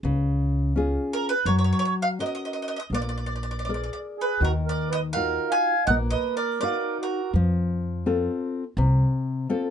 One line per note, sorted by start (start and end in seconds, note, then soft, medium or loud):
0.03 0.96 C#2 medium
0.03 0.73 C#3 medium
0.76 1.33 C#4 soft
0.76 1.33 F4 soft
0.76 1.34 G#4 soft
1.13 1.29 A#4 medium
1.29 1.45 B4 medium
1.45 1.71 F#2 medium
1.45 2.17 F#3 medium
1.45 1.54 C#5 medium
1.59 1.63 C#5 medium
1.64 1.71 C#5 medium
1.73 1.78 C#5 medium
1.79 1.84 C#5 medium
1.85 1.93 C#5 medium
2.02 2.07 F5 medium
2.19 2.77 C#4 soft
2.19 2.78 F#4 soft
2.19 2.78 A#4 soft
2.19 2.25 D#5 medium
2.26 2.34 D#5 soft
2.35 2.42 D#5 medium
2.45 2.51 D#5 soft
2.53 2.59 D#5 medium
2.62 2.67 D#5 soft
2.68 2.74 D#5 medium
2.76 2.78 D#5 soft
2.76 2.86 D#5 medium
2.90 3.88 A#1 medium
2.90 3.65 A#3 medium
2.94 3.01 D5 medium
3.02 3.08 D5 soft
3.09 3.16 D5 soft
3.18 3.25 D5 soft
3.26 3.33 D5 soft
3.36 3.41 D5 soft
3.43 3.48 D5 soft
3.51 3.56 D5 soft
3.59 3.64 D5 soft
3.65 3.71 D5 soft
3.69 4.28 G#4 soft
3.69 4.29 A#4 soft
3.69 4.29 D5 soft
3.74 3.80 D5 soft
3.84 3.89 D5 soft
3.93 3.98 D5 soft
4.18 4.41 G#4 medium
4.18 4.44 B4 medium
4.40 5.36 D#2 medium
4.40 5.14 D#3 medium
4.40 4.52 F#4 medium
4.45 4.51 A#4 medium
4.66 4.89 A#4 medium
4.66 4.91 D5 medium
4.89 5.01 B4 medium
4.89 4.99 D#5 medium
5.13 5.75 D#4 soft
5.13 5.75 F4 soft
5.13 5.75 F#4 soft
5.13 5.51 A#4 medium
5.13 5.51 F5 medium
5.51 5.84 F5 medium
5.51 5.85 G#5 medium
5.86 6.13 A#1 medium
5.86 6.60 A#3 medium
5.86 5.98 D#5 medium
5.86 5.94 F#5 medium
6.10 6.35 B4 medium
6.10 6.34 D#5 medium
6.36 6.60 A#4 medium
6.36 6.59 D5 medium
6.61 7.20 D#4 soft
6.61 7.20 F#4 soft
6.61 6.98 A#4 medium
6.61 7.01 D5 medium
6.61 7.20 F5 soft
7.01 7.32 F#4 medium
7.01 7.33 A#4 medium
7.34 8.27 F2 medium
7.34 8.04 F3 medium
8.06 8.63 C4 soft
8.06 8.63 F4 soft
8.06 8.63 A4 soft
8.77 9.01 C2 medium
8.77 9.46 C3 medium
9.50 9.70 C4 medium
9.50 9.70 F4 soft
9.50 9.70 A4 medium